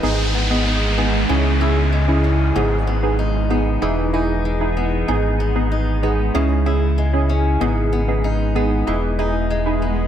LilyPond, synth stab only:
\new Staff \with { instrumentName = "Synth stab" } { \time 4/4 \key gis \minor \tempo 4 = 95 <b dis' gis'>8. <b dis' gis'>8. <b dis' gis'>8 <cis' e' gis'>8 <cis' e' gis'>16 r8 <cis' e' gis'>16 r8 | <b dis' gis'>8. <b dis' gis'>8. <b dis' gis'>8 <dis' e' gis'>8 <dis' e' gis'>16 r8 <dis' e' gis'>16 r8 | <b dis' gis'>8. <b dis' gis'>8. <b dis' gis'>8 <cis' e' gis'>8 <cis' e' gis'>16 r8 <cis' e' gis'>16 r8 | <b dis' gis'>8. <b dis' gis'>8. <b dis' gis'>8 <dis' e' gis'>8 <dis' e' gis'>16 r8 <dis' e' gis'>16 r8 | }